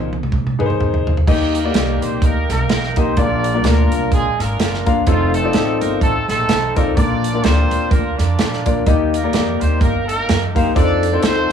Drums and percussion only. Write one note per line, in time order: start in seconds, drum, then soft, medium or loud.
0.13 high tom medium
0.23 mid tom medium
0.32 kick medium
0.32 mid tom medium
0.47 mid tom medium
0.60 mid tom medium
0.70 mid tom medium
0.81 mid tom medium
0.94 floor tom medium
1.07 floor tom medium
1.17 floor tom medium
1.28 kick loud
1.28 crash medium
1.55 closed hi-hat medium
1.74 snare loud
1.74 closed hi-hat loud
2.02 closed hi-hat medium
2.22 kick loud
2.22 closed hi-hat medium
2.49 snare soft
2.49 closed hi-hat medium
2.69 snare loud
2.69 closed hi-hat medium
2.83 snare soft
2.96 kick loud
2.96 closed hi-hat medium
3.17 kick loud
3.17 closed hi-hat medium
3.44 closed hi-hat medium
3.64 snare loud
3.64 closed hi-hat loud
3.92 closed hi-hat medium
4.12 kick loud
4.12 closed hi-hat medium
4.40 snare soft
4.40 closed hi-hat medium
4.60 snare loud
4.60 closed hi-hat medium
4.74 snare soft
4.87 kick loud
4.87 closed hi-hat medium
5.07 kick loud
5.07 closed hi-hat medium
5.34 closed hi-hat medium
5.53 snare loud
5.53 closed hi-hat loud
5.81 closed hi-hat medium
6.01 kick loud
6.01 closed hi-hat medium
6.29 snare soft
6.29 closed hi-hat medium
6.49 snare loud
6.49 closed hi-hat loud
6.76 kick loud
6.76 closed hi-hat medium
6.97 kick loud
6.97 closed hi-hat medium
7.24 closed hi-hat medium
7.44 snare loud
7.44 closed hi-hat loud
7.71 closed hi-hat medium
7.91 kick loud
7.91 closed hi-hat medium
8.19 snare soft
8.19 closed hi-hat medium
8.39 snare loud
8.39 closed hi-hat loud
8.53 snare soft
8.66 kick medium
8.66 closed hi-hat medium
8.86 kick loud
8.86 closed hi-hat medium
9.14 closed hi-hat medium
9.33 snare loud
9.33 closed hi-hat medium
9.61 closed hi-hat medium
9.81 kick loud
9.81 closed hi-hat medium
10.09 closed hi-hat medium
10.29 snare loud
10.29 closed hi-hat medium
10.56 kick loud
10.56 closed hi-hat medium
10.76 kick loud
10.76 closed hi-hat medium
11.03 closed hi-hat medium
11.23 snare loud
11.23 closed hi-hat loud